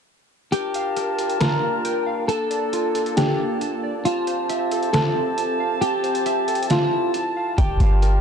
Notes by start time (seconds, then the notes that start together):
0.52 G3 D4 F4 G4 A#4 G5 A5, closed hi-hat
0.74 F5, closed hi-hat
0.97 A#4, closed hi-hat
1.19 G4, closed hi-hat
1.30 closed hi-hat
1.40 F4 A#4, snare, closed hi-hat
1.63 A#3
1.85 G5, closed hi-hat
2.06 F5
2.28 A#3 A4 A5, closed hi-hat
2.50 D5, closed hi-hat
2.73 F4, closed hi-hat
2.95 A4, closed hi-hat
3.06 closed hi-hat
3.17 D4 G4, snare, closed hi-hat
3.40 A#3
3.61 A5, closed hi-hat
3.83 D5
4.05 F3 C4 F4 G4 A5, closed hi-hat
4.27 C5, closed hi-hat
4.49 E5, closed hi-hat
4.71 A4, closed hi-hat
4.83 closed hi-hat
4.93 F4 A4, snare, closed hi-hat
5.15 C4
5.38 A5, closed hi-hat
5.60 F5
5.81 G4 A5, closed hi-hat
6.04 C5, closed hi-hat
6.15 closed hi-hat
6.26 E5, closed hi-hat
6.48 A4, closed hi-hat
6.55 closed hi-hat
6.63 closed hi-hat
6.70 F4, snare, closed hi-hat
6.93 E4
7.14 A5, closed hi-hat
7.36 F5
7.58 G1 G3 D4 F4 G4 A#4 G5, kick, closed hi-hat
7.80 G1 F5, closed hi-hat
8.02 A#4, closed hi-hat